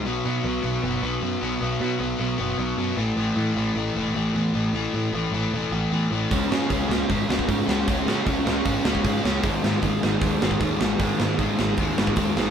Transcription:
<<
  \new Staff \with { instrumentName = "Overdriven electric guitar" } { \clef bass \time 4/4 \key cis \minor \tempo 4 = 153 r1 | r1 | r1 | r1 |
<cis gis cis'>8 <cis gis cis'>8 <cis gis cis'>8 <cis gis cis'>8 <cis gis cis'>8 <cis gis cis'>8 <cis gis cis'>8 <cis gis cis'>8 | <cis gis cis'>8 <cis gis cis'>8 <cis gis cis'>8 <cis gis cis'>8 <cis gis cis'>8 <cis gis cis'>8 <cis gis cis'>8 <cis gis cis'>8 | <gis, dis gis>8 <gis, dis gis>8 <gis, dis gis>8 <gis, dis gis>8 <gis, dis gis>8 <gis, dis gis>8 <gis, dis gis>8 <gis, dis gis>8 | <gis, dis gis>8 <gis, dis gis>8 <gis, dis gis>8 <gis, dis gis>8 <gis, dis gis>8 <gis, dis gis>8 <gis, dis gis>8 <gis, dis gis>8 | }
  \new Staff \with { instrumentName = "Overdriven electric guitar" } { \clef bass \time 4/4 \key cis \minor <b, fis b>8 <b, fis b>8 <b, fis b>8 <b, fis b>8 <b, fis b>8 <b, fis b>8 <b, fis b>8 <b, fis b>8 | <b, fis b>8 <b, fis b>8 <b, fis b>8 <b, fis b>8 <b, fis b>8 <b, fis b>8 <b, fis b>8 <a, e a>8 | <a, e a>8 <a, e a>8 <a, e a>8 <a, e a>8 <a, e a>8 <a, e a>8 <a, e a>8 <a, e a>8 | <a, e a>8 <a, e a>8 <a, e a>8 <a, e a>8 <a, e a>8 <a, e a>8 <a, e a>8 <a, e a>8 |
<cis gis cis'>8 <cis gis cis'>8 <cis gis cis'>8 <cis gis cis'>8 <cis gis cis'>8 <cis gis cis'>8 <cis gis cis'>8 <cis gis cis'>8 | <cis gis cis'>8 <cis gis cis'>8 <cis gis cis'>8 <cis gis cis'>8 <cis gis cis'>8 <cis gis cis'>8 <cis gis cis'>8 <cis gis cis'>8 | <gis, dis gis>8 <gis, dis gis>8 <gis, dis gis>8 <gis, dis gis>8 <gis, dis gis>8 <gis, dis gis>8 <gis, dis gis>8 <gis, dis gis>8 | <gis, dis gis>8 <gis, dis gis>8 <gis, dis gis>8 <gis, dis gis>8 <gis, dis gis>8 <gis, dis gis>8 <gis, dis gis>8 <gis, dis gis>8 | }
  \new Staff \with { instrumentName = "Picked electric bass" } { \clef bass \time 4/4 \key cis \minor b,,8 b,8 b,,8 b,,8 fis,,8 b,,8 fis,8 b,,8 | b,,8 b,8 b,,8 b,,8 fis,,8 b,,8 fis,8 a,,8 | a,,8 a,8 a,,8 a,,8 e,,8 a,,8 e,8 a,,8 | a,,8 a,8 a,,8 a,,8 e,,8 a,,8 e,8 a,,8 |
cis,8 cis8 cis,8 cis,8 gis,,8 cis,8 gis,8 cis,8 | cis,8 cis8 cis,8 cis,8 gis,,8 cis,8 gis,8 cis,8 | gis,,8 gis,8 gis,,8 gis,,8 dis,8 gis,,8 dis,8 gis,,8 | gis,,8 gis,8 gis,,8 gis,,8 dis,8 gis,,8 dis,8 gis,,8 | }
  \new DrumStaff \with { instrumentName = "Drums" } \drummode { \time 4/4 r4 r4 r4 r4 | r4 r4 r4 r4 | r4 r4 r4 r4 | r4 r4 r4 r4 |
<hho bd>8 sn8 <hho bd>8 sn8 <hho bd>8 sn16 bd16 <hho bd>8 sn8 | <hho bd>8 sn8 <hho bd>8 sn8 <hho bd>8 sn16 bd16 <hho bd>8 sn8 | <hho bd>8 sn8 <hho bd>8 sn8 <hho bd>8 sn16 bd16 <hho bd>8 sn8 | <hho bd>8 sn8 <hho bd>8 sn8 <hho bd>8 sn16 bd16 <hho bd>8 sn8 | }
>>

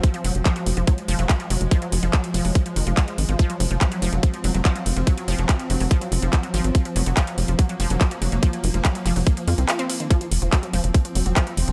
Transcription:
<<
  \new Staff \with { instrumentName = "Ambient pad" } { \time 4/4 \key f \phrygian \tempo 4 = 143 <f aes>1~ | <f aes>1 | c'1~ | c'1 |
bes1~ | bes1 | <f c'>1 | }
  \new Staff \with { instrumentName = "Synth arpeggio sound" } { \clef bass \time 4/4 \key f \phrygian r16 f16 ges16 r16 f16 ges16 r16 f16 ges16 r16 f16 ges16 r16 f16 ges16 r16 | f16 ges16 r16 f16 ges16 r16 f16 ges16 r16 f16 ees16 f16 aes16 f16 r16 f16 | f16 ges16 r16 f16 ges16 ges16 f16 ges16 r16 f16 ges16 ges16 f16 ges16 r16 f16 | ges16 ges16 f16 ges16 r16 f16 ges16 ges16 f16 ges16 r16 f16 ges16 ges16 f16 ges16 |
r16 f16 ges16 ges16 f16 ges16 r16 f16 ges16 ges16 f16 ges16 r16 f16 ges16 ges16 | f16 ges16 r16 f16 ges16 ges16 f16 ges16 r16 f16 f'16 c'16 f'16 c'16 f16 ees16 | f16 f16 r16 f16 ges16 ges16 f16 f16 r16 f16 ges16 ges16 f16 f16 r16 f16 | }
  \new Staff \with { instrumentName = "Analog synth bass" } { \clef bass \time 4/4 \key f \phrygian r8 f,,16 f,,16 r8 f,,16 f,,16 r8 f,,16 f,,16 r8 f,,16 f,,16 | r8 f,,16 f,,16 r8 f,,16 f,,16 r8 f,,16 f,,16 r8 aes,,16 aes,,16 | r8 f,,16 f,,16 r8 f,,16 f,,16 r8 f,,16 f,,16 r8 f,,16 f,,16 | r8 f,,16 f,,16 r8 f,,16 f,,16 r8 f,,16 f,,16 r8 aes,,16 aes,,16 |
r8 f,,16 f,,16 r8 f,,16 f,,16 r8 f,,16 f,,16 r8 f,,16 f,,16 | r8 f,,16 f,,16 r8 f,,16 f,,16 r8 f,16 c,16 r4 | r8 f,,16 f,,16 r8 f,,16 f,,16 r8 f,,16 f,,16 r8 f,,16 f,,16 | }
  \new DrumStaff \with { instrumentName = "Drums" } \drummode { \time 4/4 <hh bd>16 hh16 hho16 hh16 <hc hh bd>16 hh16 hho16 hh16 <hh bd>16 hh16 hho16 hh16 <hc hh bd>16 hh16 hho16 hh16 | <hh bd>16 hh16 hho16 hh16 <hc hh bd>16 hh16 hho16 hho16 <hh bd>16 hh16 hho16 hh16 <hc hh bd>16 hh16 hho16 hh16 | <hh bd>16 hh16 hho16 hh16 <hc hh bd>16 hh16 hho16 hh16 <hh bd>16 hh16 hho16 hh16 <hc hh bd>16 hh16 hho16 hh16 | <hh bd>16 hh16 hho16 hh16 <hc hh bd>16 hh16 hho16 hho16 <hh bd>16 hh16 hho16 hh16 <hc hh bd>16 hh16 hho16 hh16 |
<hh bd>16 hh16 hho16 hh16 <hc hh bd>16 hh16 hho16 hh16 <hh bd>16 hh16 hho16 hh16 <hc hh bd>16 hh16 hho16 hh16 | <hh bd>16 hh16 hho16 hh16 <hc hh bd>16 hh16 <hc hho>16 hho16 <hh bd>16 hh16 hho16 hh16 <hc hh>16 hh16 hho16 hh16 | <hh bd>16 hh16 hho16 hh16 <hc hh bd>16 hh16 hho16 hh16 <hh bd>16 hh16 hho16 hh16 <hc hh bd>16 hh16 hho16 hh16 | }
>>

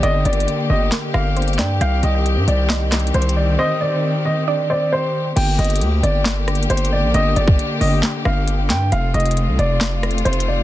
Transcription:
<<
  \new Staff \with { instrumentName = "Grand piano" } { \time 4/4 \key g \minor \tempo 4 = 135 ees''8 d''4 ees''8 r8 f''4 g''8 | f''8 ees''4 d''4. c''8 d''8 | ees''8 d''4 ees''8 r8 d''8 c''4 | g''8 ees''4 d''4. c''8 d''8 |
ees''8 d''4 ees''8 r8 f''4 g''8 | f''8 ees''4 d''4. c''8 d''8 | }
  \new Staff \with { instrumentName = "Synth pluck" } { \time 4/4 \key g \minor d''4 r4 bes'4 c''8 d''8 | g''4 r4 ees''4 r4 | c''4 r4 d''8 c''4. | r1 |
r1 | r1 | }
  \new Staff \with { instrumentName = "String section" } { \time 4/4 \key g \minor << { g'1~ | g'1~ | g'1 | g'1~ |
g'1 | f'1 | } \\ { <d bes>1 | <ees c'>1~ | <ees c'>1 | <d bes>1~ |
<d bes>1 | <c a>1 | } >> }
  \new Staff \with { instrumentName = "808-style bass" } { \clef bass \time 4/4 \key g \minor g,,8 g,,8 r8 g,,8 r8 g,,4 g,8 | c,8 c,8. g,16 c,4. c,4 | r1 | g,,8 g,,8 d,8 g,,4. g,,8. bes,,16 |
g,,8 g,,8 r8 g,,8 r8 g,,4 g,8 | f,,8 f,,8. c,16 f,,4. f,,4 | }
  \new DrumStaff \with { instrumentName = "Drums" } \drummode { \time 4/4 \tuplet 3/2 { hh16 r16 r16 <hh hho>16 hh16 hh16 } hh4 <hc hh sn>8 ss8 hh32 hh32 hh32 hh32 <hc hh sn>8 | hh8 hh8 hh8 hh8 \tuplet 3/2 { <hc hh sn>16 r16 r16 <hc hh ss sn>16 hh16 hh16 hh16 hh16 hh16 r16 r16 r16 } | r4 r4 r4 r4 | <cymc hh>8 hh32 hh32 hh32 hh32 hh8 hh8 \tuplet 3/2 { <hc hh sn>16 r16 r16 <hh ss>16 hh16 hh16 hh16 hh16 hh16 r16 r16 r16 } |
hh8 hh16 bd16 hh8 hho8 <hc hh sn>8 ss8 hh8 <hc hh sn>8 | hh8 hh32 hh32 hh32 hh32 hh8 hh8 \tuplet 3/2 { <hc hh sn>16 r16 r16 <hh ss>16 hh16 hh16 hh16 hh16 hh16 r16 r16 r16 } | }
>>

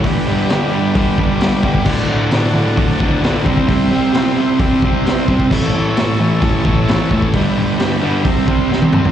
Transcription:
<<
  \new Staff \with { instrumentName = "Transistor combo organ" } { \time 4/4 \key c \lydian \tempo 4 = 132 << { r2. d'''4 | r1 | r1 | r1 |
r1 | } \\ { <g' b' d''>1 | <fis' a' d''>2.~ <fis' a' d''>8 <g' c'' e''>8~ | <g' c'' e''>1 | <a' cis'' e''>1 |
<g' b' d''>2 <g' c'' e''>2 | } >> }
  \new Staff \with { instrumentName = "Distorted electric guitar" } { \clef bass \time 4/4 \key c \lydian <g, d g>8 <g, d g>8 <g, d g>8 <g, d g>8 <g, d g>8 <g, d g>8 <g, d g>8 <g, d g>8 | <d, a, d>8 <d, a, d>8 <d, a, d>8 <d, a, d>8 <d, a, d>8 <d, a, d>8 <d, a, d>8 <c g c'>8 | <c g c'>8 <c g c'>8 <c g c'>8 <c g c'>8 <c g c'>8 <c g c'>8 <c g c'>8 <c g c'>8 | <a, e a>8 <a, e a>8 <a, e a>8 <a, e a>8 <a, e a>8 <a, e a>8 <a, e a>8 <a, e a>8 |
<g, d g>8 <g, d g>8 <g, d g>8 <g, d g>8 <c g c'>8 <c g c'>8 <c g c'>8 <c g c'>8 | }
  \new DrumStaff \with { instrumentName = "Drums" } \drummode { \time 4/4 <hho bd>4 <hho sn>4 <hho bd>8 bd8 <hho sn>8 bd16 bd16 | <cymc bd>4 <hho sn>4 <hho bd>8 bd8 <hho sn>8 bd16 bd16 | <hho bd>4 <hho sn>4 <hho bd>8 bd8 <hho sn>8 bd16 bd16 | <cymc bd>4 <hho sn>4 <hho bd>8 bd8 <hho sn>8 bd16 bd16 |
<hho bd>4 <hho sn>4 <hho bd>8 bd8 sn16 tommh16 toml16 tomfh16 | }
>>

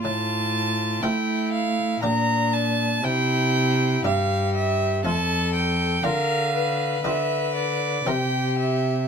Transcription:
<<
  \new Staff \with { instrumentName = "Violin" } { \time 3/4 \key f \major \tempo 4 = 60 a''4 g''8 f''8 bes''8 a''8 | g''4 f''8 e''8 a''8 g''8 | f''4 e''8 d''8 g''8 e''8 | }
  \new Staff \with { instrumentName = "Violin" } { \time 3/4 \key f \major f'4 e'4 d'4 | e'4 g'4 a'4 | bes'8 b'4. g'4 | }
  \new Staff \with { instrumentName = "Harpsichord" } { \time 3/4 \key f \major a,4 <a c' f' a'>4 <bes, bes d' g'>4 | c4 <g, bes e' g'>4 <f, a f'>4 | <d bes f'>4 <d b f' g'>4 <c c' e' bes'>4 | }
  \new Staff \with { instrumentName = "Cello" } { \clef bass \time 3/4 \key f \major a,4 a4 bes,4 | c4 g,4 f,4 | d4 d4 c4 | }
>>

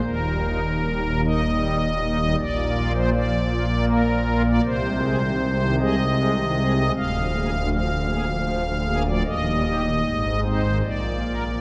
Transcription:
<<
  \new Staff \with { instrumentName = "Pipe organ" } { \time 3/4 \key bes \mixolydian \tempo 4 = 78 bes'4. ees''4. | d''8. c''16 d''4 bes'8. d''16 | c''4. ees''4. | f''4 f''4.~ f''16 d''16 |
ees''4. c''8 d''4 | }
  \new Staff \with { instrumentName = "Pipe organ" } { \clef bass \time 3/4 \key bes \mixolydian << { ees,16 g16 <bes ees'>16 bes,16 g16 bes,16 <bes ees'>16 g8 bes,16 <bes ees'>16 g16 | bes,16 bes16 <bes f'>16 f16 bes16 f16 <bes f'>16 bes8 f16 <bes f'>16 bes16 | c16 aes16 <aes aes'>16 ees16 aes16 ees16 <aes aes'>16 aes8 ees16 <aes aes'>16 aes16 | d,16 f16 <bes aes'>16 d16 f16 d16 <bes aes'>16 f8 d16 <bes aes'>16 f16 |
ees,16 g16 <bes g'>16 bes,16 aes,16 aes16 <c' ees'>16 ees16 bes,16 bes16 <bes bes'>16 f16 | } \\ { ees,,2. | bes,,2. | c,2. | d,,2. |
ees,,4 aes,,4 bes,,4 | } >> }
>>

